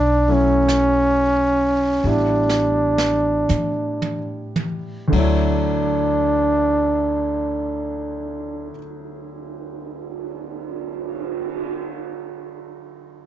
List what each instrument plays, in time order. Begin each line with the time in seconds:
Already playing: upright bass B1, trombone D4
0.28 grand piano F#3 A3 C#4 E4
0.33 trombone C#4
0.68 brush sweep, snare, hi-hat pedal
2.04 upright bass A1, grand piano G3 B3 D4 E4
2.09 trombone D4
2.49 snare
2.98 snare
3.49 upright bass A2, hi-hat pedal, high tom
4.02 high tom
4.56 high tom
5.08 grand piano D2 D3
5.12 upright bass D2, grand piano F#3 C#5, kick, ride
5.17 trombone D4, grand piano E4
6.28 cymbal swell